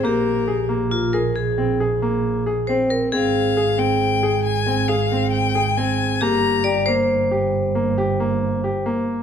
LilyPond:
<<
  \new Staff \with { instrumentName = "Violin" } { \time 7/4 \key f \minor \tempo 4 = 136 bes'4. r1 r4. | f''4. g''4. aes''4 f''4 g''4 aes''4 | bes''4. r1 r4. | }
  \new Staff \with { instrumentName = "Vibraphone" } { \time 7/4 \key f \minor g'2 f'8 bes'8 aes'2. c''8 bes'8 | aes'1.~ aes'4 | g'4 d''8 c''1~ c''4 r8 | }
  \new Staff \with { instrumentName = "Grand piano" } { \time 7/4 \key f \minor bes4 aes'8 bes4 aes'4 c'8 aes'8 bes4 aes'8 c'4 | c'4 aes'8 c'4 aes'4 c'8 aes'8 c'4 aes'8 c'4 | bes4 g'8 bes4 g'4 bes8 g'8 bes4 g'8 bes4 | }
  \new Staff \with { instrumentName = "Double bass" } { \clef bass \time 7/4 \key f \minor bes,,1.~ bes,,4 | aes,,1.~ aes,,4 | g,,1.~ g,,4 | }
>>